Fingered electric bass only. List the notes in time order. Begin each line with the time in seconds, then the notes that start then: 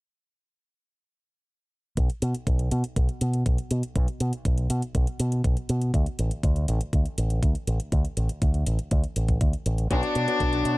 1.97 B1
2.22 B2
2.47 B1
2.72 B2
2.96 B1
3.21 B2
3.46 B1
3.71 B2
3.96 B1
4.20 B2
4.45 B1
4.70 B2
4.95 B1
5.20 B2
5.44 B1
5.69 B2
5.94 D2
6.19 A1
6.43 D2
6.68 A1
6.93 D2
7.18 A1
7.43 D2
7.67 A1
7.92 D2
8.17 A1
8.42 D2
8.67 A1
8.92 D2
9.16 A1
9.41 D2
9.66 A1
9.91 B1
10.16 B2
10.40 B1
10.65 B2